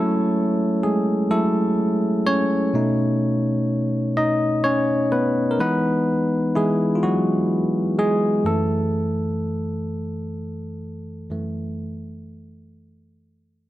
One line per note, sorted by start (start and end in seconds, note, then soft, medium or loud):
0.00 1.31 F#3 medium
0.00 1.31 A3 medium
0.00 2.28 C#4 medium
0.00 1.31 E4 medium
0.00 1.31 A4 medium
0.00 2.27 C#5 medium
0.83 1.27 G#3 medium
0.83 1.31 G#4 medium
1.31 1.74 F#3 soft
1.31 2.21 A3 medium
1.31 1.74 E4 medium
1.31 2.21 A4 medium
2.27 4.12 C#4 medium
2.27 4.21 C#5 loud
2.74 5.54 B2 medium
2.74 5.55 A3 soft
2.74 4.17 D#4 medium
4.17 4.61 D#4 medium
4.17 4.65 D#5 medium
4.64 5.08 C#4 medium
4.64 5.07 C#5 loud
5.12 5.30 B3 medium
5.12 5.30 B4 medium
5.51 5.58 A#4 medium
5.59 6.55 E3 medium
5.59 6.56 G#3 soft
5.59 6.50 B3 medium
5.59 8.41 D#4 medium
5.59 6.57 B4 medium
6.55 6.99 E3 medium
6.55 6.93 G#3 medium
6.55 7.03 E4 medium
6.55 6.96 G#4 medium
6.95 7.01 F4 medium
7.03 7.93 F#3 medium
7.03 8.05 F#4 medium
7.99 8.42 G#3 medium
7.99 8.46 G#4 medium
8.45 11.26 F#2 medium
8.45 11.26 E3 medium
8.45 11.30 A3 medium
8.45 13.17 A4 medium
11.30 11.93 F#2 soft
11.30 11.93 E3 soft
11.30 11.94 A3 medium